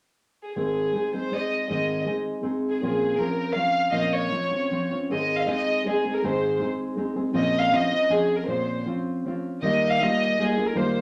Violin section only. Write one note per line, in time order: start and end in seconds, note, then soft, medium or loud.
0.44 0.55 G#4 soft
0.57 1.10 G#4 medium
1.15 1.33 C5 medium
1.34 1.69 D#5 medium
1.70 2.05 D#5 soft
2.69 2.81 G#4 medium
2.82 3.17 G#4 medium
3.17 3.55 A#4 medium
3.54 3.88 F5 medium
3.92 4.12 D#5 medium
3.92 3.95 F5 medium
4.12 4.90 C#5 medium
5.12 5.35 D#5 medium
5.38 5.49 F5 medium
5.51 5.85 D#5 medium
5.89 6.12 G#4 medium
6.15 6.25 A#4 medium
6.26 6.62 C5 medium
7.35 7.59 D#5 medium
7.60 7.73 F5 medium
7.74 8.11 D#5 medium
8.11 8.36 G#4 medium
8.37 8.49 A#4 medium
8.48 8.83 C5 medium
9.62 9.87 D#5 medium
9.90 10.02 F5 medium
10.00 10.39 D#5 medium
10.41 10.65 G#4 medium
10.66 10.78 A#4 medium
10.76 11.01 C5 medium